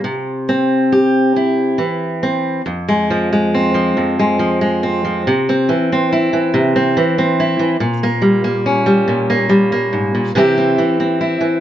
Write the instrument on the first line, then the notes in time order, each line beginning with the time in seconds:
steel-string acoustic guitar
0.04 C3
0.49 C4
0.92 G4
1.36 E4
1.78 E3
2.23 C4
2.66 F2
2.89 G#3
3.10 F3
3.33 G#3
3.54 C4
3.74 F3
3.97 F2
4.19 G#3
4.39 F3
4.61 G#3
4.83 C4
5.05 F3
5.27 C3
5.49 C4
5.69 E3
5.92 C4
6.13 E4
6.33 E3
6.54 C3
6.76 C4
6.97 E3
7.18 C4
7.40 E4
7.59 E3
7.80 A#2
8.03 A#3
8.22 G3
8.44 A#3
8.66 C#4
8.86 G3
9.08 A#2
9.30 A#3
9.49 G3
9.72 A#3
9.93 G#2
10.15 A#2
10.35 C3 E3 C4 E4 G4
10.58 C4
10.78 E3
11.00 C4
11.21 E4
11.41 E3